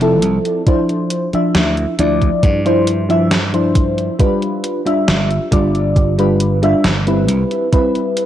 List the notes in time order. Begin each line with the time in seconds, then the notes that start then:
Already playing: F1
0.01 F3 C4 E4 A4, closed hi-hat
0.22 C2, closed hi-hat
0.45 closed hi-hat
0.67 F3 D4 E4 C5, kick, closed hi-hat
0.89 closed hi-hat
1.10 closed hi-hat
1.33 F3 D4 E4 E5, muted slap bass stroke, closed hi-hat
1.55 D2, snare, closed hi-hat
1.77 closed hi-hat
1.98 D2 F3 D4 E4 D5, closed hi-hat
2.22 kick, closed hi-hat
2.43 G2, kick, closed hi-hat
2.65 F3 D4 E4 C5, closed hi-hat
2.87 closed hi-hat
3.09 F3 D4 E4 E5, closed hi-hat
3.31 snare, closed hi-hat
3.53 F3 D4 E4 C5, closed hi-hat
3.75 kick, closed hi-hat
3.98 closed hi-hat
4.19 G3 D4 F4 B4, kick, closed hi-hat
4.42 closed hi-hat
4.64 closed hi-hat
4.85 G3 D4 F4 E5, closed hi-hat
5.08 G1, snare, closed hi-hat
5.31 closed hi-hat
5.51 G1 G3 D4 F4 D5, kick, closed hi-hat
5.75 closed hi-hat
5.96 kick, closed hi-hat
6.18 G3 D4 F4 B4, closed hi-hat
6.40 closed hi-hat
6.62 G3 D4 F4 E5, closed hi-hat
6.84 G1, snare, closed hi-hat
7.07 G3 C4 E4 B4, closed hi-hat
7.28 C2, closed hi-hat
7.51 closed hi-hat
7.72 G3 C4 E4 B4, kick, closed hi-hat
7.95 closed hi-hat
8.17 closed hi-hat